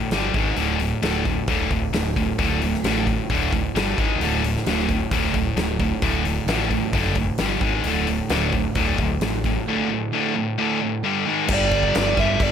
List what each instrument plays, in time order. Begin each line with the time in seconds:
0.11 fingered electric bass G1, distorted electric guitar G2 D3 G3, snare, open hi-hat
0.34 fingered electric bass G#1, distorted electric guitar G#2 D#3 G#3, kick, open hi-hat
0.56 fingered electric bass D1, distorted electric guitar D2 A2 D3, open hi-hat
0.80 distorted electric guitar D2 A2, open hi-hat
1.02 fingered electric bass D1, distorted electric guitar D2 A2 D3, snare, open hi-hat
1.25 distorted electric guitar D2 A2, kick, open hi-hat
1.48 fingered electric bass D1, distorted electric guitar D2 A2 D3, kick, open hi-hat
1.71 fingered electric bass D1, distorted electric guitar D2 A2, kick, open hi-hat
1.93 fingered electric bass D1, distorted electric guitar D2 A2, snare, open hi-hat
2.16 distorted electric guitar D2 A2, kick, open hi-hat
2.38 fingered electric bass D1, distorted electric guitar D2 A2 D3, kick, open hi-hat
2.62 distorted electric guitar D2 A2, open hi-hat
2.74 snare
2.84 fingered electric bass A1, distorted electric guitar D2 A2 D3, snare, open hi-hat
2.97 snare
3.07 distorted electric guitar D2 A2, kick, open hi-hat
3.30 fingered electric bass D1, distorted electric guitar D2 A2 D3, kick, open hi-hat
3.53 distorted electric guitar D2 A2, kick, open hi-hat
3.75 fingered electric bass G1, distorted electric guitar G2 D3 G3, snare, open hi-hat
3.98 fingered electric bass G#1, distorted electric guitar G#2 D#3 G#3, kick, open hi-hat
4.20 fingered electric bass D1, distorted electric guitar D2 A2 D3, open hi-hat
4.44 distorted electric guitar D2 A2, open hi-hat
4.56 snare
4.66 fingered electric bass D1, distorted electric guitar D2 A2 D3, snare, open hi-hat
4.79 snare
4.89 distorted electric guitar D2 A2, kick, open hi-hat
5.11 fingered electric bass D1, distorted electric guitar D2 A2 D3, kick, open hi-hat
5.34 fingered electric bass D1, distorted electric guitar D2 A2, kick, open hi-hat
5.56 fingered electric bass D1, distorted electric guitar D2 A2, snare, open hi-hat
5.79 distorted electric guitar D2 A2, kick, open hi-hat
6.02 fingered electric bass D1, distorted electric guitar D2 A2 D3, kick, open hi-hat
6.25 distorted electric guitar D2 A2, open hi-hat
6.47 fingered electric bass A1, distorted electric guitar D2 A2 D3, snare, open hi-hat
6.70 distorted electric guitar D2 A2, kick, open hi-hat
6.93 fingered electric bass F#1, distorted electric guitar D2 A2 D3, kick, open hi-hat
7.15 distorted electric guitar D2 A2, kick, open hi-hat
7.38 fingered electric bass G1, distorted electric guitar G2 D3 G3, snare, open hi-hat
7.61 fingered electric bass G#1, distorted electric guitar G#2 D#3 G#3, kick, open hi-hat
7.84 fingered electric bass D1, distorted electric guitar D2 A2 D3, open hi-hat
8.07 distorted electric guitar D2 A2, open hi-hat
8.29 fingered electric bass D1, distorted electric guitar D2 A2 D3, snare, open hi-hat
8.52 distorted electric guitar D2 A2, kick, open hi-hat
8.75 fingered electric bass D1, distorted electric guitar D2 A2 D3, kick, open hi-hat
8.98 fingered electric bass D1, distorted electric guitar D2 A2, kick, open hi-hat
9.21 fingered electric bass A1, distorted electric guitar D2 A2, snare, open hi-hat
9.44 distorted electric guitar D2 A2, kick, open hi-hat
9.68 distorted electric guitar D2 A2 D3
9.90 distorted electric guitar D2 A2
10.13 distorted electric guitar D2 A2 D3
10.35 distorted electric guitar D2 A2
10.58 distorted electric guitar D2 A2 D3
10.82 distorted electric guitar D2 A2
11.04 distorted electric guitar G2 D3 G3
11.26 distorted electric guitar G#2 D#3 G#3
11.48 fingered electric bass G1, distorted electric guitar G2 D3 G3, kick, crash
11.54 lead electric guitar D5
11.71 kick, crash
11.83 kick
11.95 fingered electric bass G1, lead electric guitar D5, snare, crash
12.17 fingered electric bass G1, distorted electric guitar G2 D3 G3, lead electric guitar E5, kick, snare, crash
12.40 fingered electric bass G1, lead electric guitar D5, kick, crash